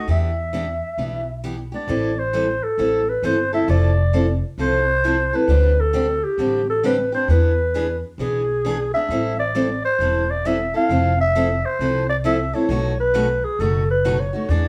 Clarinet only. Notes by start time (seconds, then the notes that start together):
0.11 E5
1.75 D5
2.19 C5
2.63 A4
3.09 B4
3.25 C5
3.54 E5
3.70 D5
4.60 C5
5.36 B4
5.80 A4
6.24 G4
6.70 A4
6.85 B4
7.14 C5
7.30 B4
8.21 G#4
8.94 E5
9.39 D5
9.85 C5
10.30 D5
10.46 E5
10.76 F5
11.21 E5
11.65 C5
12.09 D5
12.25 E5
12.54 C#5
13.00 B4
13.44 G#4
13.60 A4
13.90 B4
14.20 C#5
14.51 D5